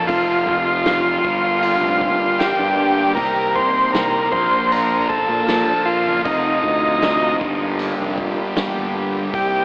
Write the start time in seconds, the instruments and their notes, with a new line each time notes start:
Already playing: string section F3 F4
0.07 fingered electric bass F1, distorted electric guitar F2 C3, string section C4 D#4, transistor combo organ F4, kick, open hi-hat
0.13 distorted electric guitar F3
0.47 fingered electric bass F1, kick
0.86 snare, open hi-hat
1.22 fingered electric bass G1, distorted electric guitar G2, string section G3 A#3 D4 G4, kick
1.27 distorted electric guitar D3 G3
1.63 open hi-hat
1.80 fingered electric bass F1
2.01 kick
2.39 distorted electric guitar G2 D3 G3, transistor combo organ G4, snare, open hi-hat
2.59 fingered electric bass G2
3.15 fingered electric bass C2, distorted electric guitar C3 G3, transistor combo organ A#4, kick, open hi-hat
3.19 string section C4 D#4, distorted electric guitar C4
3.55 transistor combo organ C5, kick
3.93 fingered electric bass C2, transistor combo organ A#4, snare, open hi-hat
4.32 fingered electric bass A#1, distorted electric guitar A#2 F3 A#3, string section F3, transistor combo organ C5, kick
4.36 string section D4 F4
4.72 transistor combo organ A#4, open hi-hat
5.09 transistor combo organ A4, kick
5.29 fingered electric bass A#2
5.48 distorted electric guitar A#2 F3 A#3, snare, open hi-hat
5.85 transistor combo organ F4
6.06 fingered electric bass F#1
6.25 fingered electric bass F1, distorted electric guitar F2 C3 F3, string section C4 D#4, transistor combo organ D#4, kick, open hi-hat
6.64 fingered electric bass D2, kick
7.02 snare, open hi-hat
7.41 fingered electric bass G1, distorted electric guitar G2 D3 G3, string section G3 A#3 D4 G4, kick
7.79 open hi-hat
8.00 fingered electric bass F1
8.18 kick
8.56 distorted electric guitar G2 D3 G3, snare, open hi-hat
8.78 fingered electric bass G1
9.34 fingered electric bass C2, distorted electric guitar C3 G3 C4, string section C4 D#4, transistor combo organ G4, kick, open hi-hat